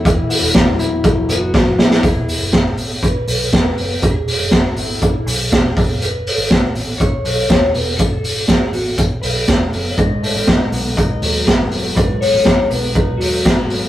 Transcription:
0.00 0.10 C#4 medium
0.00 0.58 E4 medium
0.00 1.49 E4 medium
0.05 0.26 E1 loud
0.05 2.59 E3 medium
0.05 kick loud
0.05 hi-hat pedal medium
0.05 open hi-hat medium
0.30 1.28 B3 medium
0.30 hi-hat pedal medium
0.30 open hi-hat medium
0.42 1.04 E1 loud
0.54 1.03 F#3 medium
0.54 kick loud
0.54 snare loud
0.54 hi-hat pedal medium
0.54 open hi-hat medium
0.79 1.79 E4 medium
0.79 hi-hat pedal medium
0.79 open hi-hat medium
1.04 1.25 B1 loud
1.04 1.53 F#3 medium
1.04 kick loud
1.04 hi-hat pedal medium
1.04 open hi-hat medium
1.28 1.50 F#1 loud
1.28 2.59 B3 medium
1.28 1.86 F#4 medium
1.28 hi-hat pedal medium
1.28 open hi-hat medium
1.54 1.75 F#1 loud
1.54 2.09 F#3 medium
1.54 kick loud
1.54 snare medium
1.78 2.00 A1 loud
1.78 2.59 E4 medium
1.78 snare medium
1.86 2.06 E4 medium
1.91 snare medium
2.03 2.35 E1 medium
2.03 2.74 G#4 loud
2.03 kick loud
2.03 closed hi-hat medium
2.28 open hi-hat medium
2.41 2.78 F#1 medium
2.53 kick loud
2.53 snare loud
2.53 closed hi-hat medium
2.77 3.20 G#1 medium
2.77 open hi-hat medium
3.02 3.27 B4 loud
3.02 kick loud
3.02 closed hi-hat medium
3.27 3.49 B1 medium
3.27 3.51 B4 medium
3.27 open hi-hat medium
3.53 3.74 E1 loud
3.53 4.02 B4 medium
3.53 kick loud
3.53 snare loud
3.53 closed hi-hat medium
3.76 3.98 F#1 medium
3.76 open hi-hat medium
4.02 4.34 E1 loud
4.02 4.54 G#4 medium
4.02 kick loud
4.02 closed hi-hat medium
4.28 open hi-hat medium
4.40 4.71 F#1 medium
4.51 4.75 F#4 medium
4.51 kick loud
4.51 snare loud
4.51 closed hi-hat medium
4.76 5.19 G#1 medium
4.76 5.29 E4 medium
4.76 open hi-hat medium
5.02 kick medium
5.02 closed hi-hat medium
5.26 5.48 B1 medium
5.26 6.02 G#4 medium
5.26 open hi-hat medium
5.52 5.73 E1 medium
5.52 kick loud
5.52 snare loud
5.52 closed hi-hat medium
5.76 6.29 F#1 medium
5.76 kick loud
5.76 open hi-hat medium
6.02 6.72 B4 medium
6.02 closed hi-hat medium
6.27 open hi-hat medium
6.38 6.70 G#1 medium
6.50 kick loud
6.50 snare loud
6.50 closed hi-hat medium
6.75 7.18 A1 medium
6.75 open hi-hat medium
6.98 7.48 C#5 medium
6.98 kick loud
6.98 closed hi-hat medium
7.24 7.46 B1 medium
7.24 open hi-hat medium
7.49 7.75 D#2 loud
7.49 7.73 C#5 medium
7.49 kick loud
7.49 snare loud
7.49 closed hi-hat medium
7.73 7.95 E1 medium
7.73 7.96 B4 medium
7.73 open hi-hat medium
7.96 8.36 F#1 loud
7.96 8.47 A4 medium
7.96 kick loud
7.96 closed hi-hat medium
8.24 open hi-hat medium
8.36 8.68 G#1 medium
8.47 8.74 G#4 medium
8.47 kick loud
8.47 snare loud
8.47 closed hi-hat medium
8.73 9.16 A1 medium
8.73 8.99 F#4 medium
8.73 open hi-hat medium
8.97 9.04 A4 medium
8.97 kick loud
8.97 closed hi-hat medium
9.22 9.44 B1 medium
9.22 9.97 B4 medium
9.22 open hi-hat medium
9.48 9.69 E1 medium
9.48 kick loud
9.48 snare loud
9.48 closed hi-hat medium
9.72 9.94 F#1 medium
9.72 open hi-hat medium
9.98 10.29 G#1 loud
9.98 11.96 G#2 medium
9.98 10.68 D#5 medium
9.98 kick loud
9.98 closed hi-hat medium
10.23 10.36 A3 medium
10.23 open hi-hat medium
10.35 10.67 A1 medium
10.35 10.72 B3 soft
10.47 10.96 D#4 medium
10.47 kick loud
10.47 snare loud
10.47 closed hi-hat medium
10.72 11.14 B1 medium
10.72 11.46 B3 medium
10.72 open hi-hat medium
10.97 12.46 D#4 medium
10.97 11.43 D#5 loud
10.97 kick loud
10.97 closed hi-hat medium
11.22 11.43 D#2 medium
11.22 11.71 F#3 medium
11.22 open hi-hat medium
11.46 11.71 G#1 medium
11.46 12.21 B3 medium
11.46 11.92 B4 medium
11.46 kick loud
11.46 snare loud
11.46 closed hi-hat medium
11.71 11.92 F#1 medium
11.71 13.19 F#3 medium
11.71 open hi-hat medium
11.95 12.28 G#1 loud
11.95 13.89 G#2 medium
11.95 12.20 B4 medium
11.95 kick loud
11.95 closed hi-hat medium
12.21 12.70 B3 medium
12.21 12.70 C#5 loud
12.21 open hi-hat medium
12.34 12.65 A1 medium
12.45 12.94 D#4 medium
12.45 kick loud
12.45 snare loud
12.45 closed hi-hat medium
12.70 13.20 B1 medium
12.70 13.45 B3 medium
12.70 12.93 B4 medium
12.70 open hi-hat medium
12.94 13.89 D#4 medium
12.94 13.20 B4 medium
12.94 kick loud
12.94 closed hi-hat medium
13.17 13.41 D#2 medium
13.17 13.69 F#3 medium
13.17 13.89 F#4 medium
13.17 open hi-hat medium
13.45 13.66 G#1 loud
13.45 13.58 A3 medium
13.45 kick loud
13.45 snare loud
13.45 closed hi-hat medium
13.58 13.89 B3 soft
13.69 13.89 G#1 loud
13.69 13.89 F#3 medium
13.69 open hi-hat medium

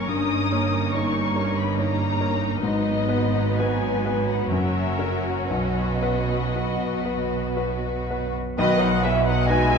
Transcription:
0.00 2.57 C#4 medium
0.00 2.57 A#4 medium
0.07 2.62 G1 medium
0.07 2.58 G2 medium
0.07 2.62 G2 medium
0.07 2.57 A#3 medium
0.07 4.48 D#4 medium
0.07 0.94 D#6 medium
0.52 0.90 A#3 soft
0.52 0.90 C#5 medium
0.94 1.32 D#4 soft
0.94 1.32 C#5 medium
0.94 1.58 C#6 medium
1.36 1.74 A#3 soft
1.36 1.74 C#5 medium
1.59 1.79 B5 medium
1.79 2.16 D#4 soft
1.79 2.16 C#5 medium
1.79 2.62 A#5 medium
2.21 2.58 A#3 soft
2.21 2.58 C#5 medium
2.61 4.48 G#1 medium
2.61 4.48 G#2 medium
2.61 8.33 F#3 medium
2.61 4.48 B3 medium
2.61 4.48 B4 medium
2.61 3.55 D#5 medium
3.09 3.54 B3 soft
3.09 3.53 B4 medium
3.58 4.02 F#4 soft
3.58 4.02 B4 medium
3.58 4.28 G#5 medium
4.05 4.48 B3 soft
4.05 4.48 B4 soft
4.30 4.53 F#5 medium
4.51 5.51 F#1 medium
4.51 5.48 F#2 medium
4.51 5.51 F#2 medium
4.51 6.55 C#4 medium
4.51 8.33 F#4 medium
4.51 5.51 A#4 medium
4.51 5.24 E5 medium
4.98 5.46 C#4 soft
4.98 5.46 A#4 soft
5.27 5.52 C#5 medium
5.50 8.53 B1 medium
5.50 8.32 B1 medium
5.50 8.32 B2 medium
5.50 8.32 B4 soft
5.50 8.10 D#5 medium
6.02 6.50 B3 soft
6.02 6.50 B4 soft
6.55 8.37 B3 soft
6.55 7.02 F#4 soft
6.55 7.02 B4 soft
7.05 7.52 B3 soft
7.05 7.53 B4 soft
7.56 8.04 F#4 soft
7.56 8.04 B4 soft
8.10 8.54 B3 soft
8.10 8.54 B4 soft
8.57 9.78 B1 medium
8.57 9.78 B2 medium
8.57 8.91 D#3 medium
8.57 8.78 D#3 loud
8.57 8.91 B3 medium
8.57 8.80 F#4 medium
8.57 8.79 B4 loud
8.57 8.93 B4 medium
8.57 8.80 B4 medium
8.57 8.79 D#5 medium
8.79 9.02 F#3 medium
8.79 9.03 D#4 medium
8.79 9.03 D#5 medium
8.79 9.03 F#5 medium
8.84 9.05 F#5 medium
9.03 9.25 E3 medium
9.03 9.44 B3 medium
9.03 9.25 F#4 medium
9.03 9.25 B4 medium
9.03 9.44 B4 medium
9.03 9.26 C#5 medium
9.03 9.25 E5 medium
9.03 9.26 E5 medium
9.24 9.46 F#3 medium
9.24 9.48 D#4 medium
9.24 9.47 D#5 medium
9.24 9.47 F#5 medium
9.28 9.48 D#5 medium
9.28 9.50 F#5 loud
9.47 9.78 G#3 loud
9.47 9.78 D#4 medium
9.47 9.69 F#4 medium
9.47 9.69 B4 medium
9.47 9.78 B4 medium
9.47 9.78 D#5 medium
9.47 9.78 E5 loud
9.47 9.78 G#5 loud
9.51 9.78 G#5 loud
9.72 9.78 D#4 medium
9.72 9.78 D#5 medium

